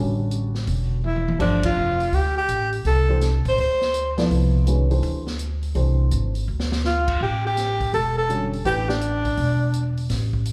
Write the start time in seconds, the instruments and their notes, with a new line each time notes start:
Already playing: upright bass A1, upright piano C#3 D3 G3 C#4 F#4 A4 B4 D5
0.31 closed hi-hat
0.55 snare
0.67 upright bass E1, open hi-hat
1.04 alto saxophone E4, mid tom
1.16 mid tom
1.28 mid tom
1.39 upright bass G1, upright piano F3 A3 D4 G4 C5, alto saxophone D4, kick, crash
1.63 alto saxophone F4, kick, ride
1.76 upright bass F1
2.00 open hi-hat
2.12 upright bass D2, alto saxophone G4, open hi-hat
2.38 alto saxophone G4
2.48 upright bass A1, closed hi-hat
2.72 open hi-hat
2.85 upright bass C2, alto saxophone A4, open hi-hat
3.09 upright piano E3 A3 D4 G4 C5
3.21 snare, closed hi-hat
3.45 upright bass A1, alto saxophone C5, kick, open hi-hat
3.58 upright bass D2, alto saxophone C5, open hi-hat
3.81 snare
3.94 closed hi-hat
4.17 upright piano F3 B3 E4 A4 D5, snare, open hi-hat
4.30 upright bass C2, open hi-hat
4.67 upright piano D#3 G#3 C#4 F#4 B4, closed hi-hat
4.90 upright piano E3 A3 D4 G4 C5, open hi-hat
5.03 upright bass D2, open hi-hat
5.27 snare
5.39 closed hi-hat
5.63 open hi-hat
5.75 upright bass C2, upright piano E3 A3 D4 G4 C5, open hi-hat
6.11 upright bass G#1, closed hi-hat
6.35 open hi-hat
6.48 upright bass D2
6.60 snare
6.72 snare
6.84 alto saxophone F4, snare
7.08 kick, crash
7.21 upright bass A1, alto saxophone G4
7.47 alto saxophone G4
7.57 snare, closed hi-hat
7.80 kick, open hi-hat
7.93 upright bass E1, alto saxophone A4, open hi-hat
8.18 alto saxophone A4
8.29 upright piano D3 G3 C#4 F#4 A4, closed hi-hat
8.53 open hi-hat
8.65 upright bass A1, upright piano E3 A3 D4 G4 B4, alto saxophone G4, open hi-hat
8.89 alto saxophone D4, snare
9.01 closed hi-hat
9.25 kick, open hi-hat
9.37 upright bass E1, open hi-hat
9.73 closed hi-hat
9.97 open hi-hat
10.10 upright bass A1, snare, open hi-hat
10.33 kick
10.45 closed hi-hat